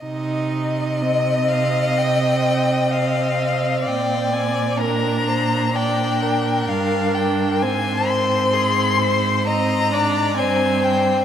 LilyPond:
<<
  \new Staff \with { instrumentName = "Violin" } { \time 4/4 \key c \minor \tempo 4 = 64 r4 ees''8 f''8 g''4 f''4 | g''8 aes''8 bes''4 g''4 f''8 g''8 | aes''8 c'''4. bes''4 aes''8 g''8 | }
  \new Staff \with { instrumentName = "Violin" } { \time 4/4 \key c \minor ees''1 | d''4 bes'8 c''8 d''8 bes'4. | c''4 aes'8 c''8 ees''8 d''8 c''4 | }
  \new Staff \with { instrumentName = "Viola" } { \time 4/4 \key c \minor ees'4 c'4 c'2~ | c'4 d'4 d'4 d'4 | c'2 c'8 d'8 c'4 | }
  \new Staff \with { instrumentName = "Cello" } { \clef bass \time 4/4 \key c \minor c1 | bes,2. g,4 | aes,2. g,4 | }
>>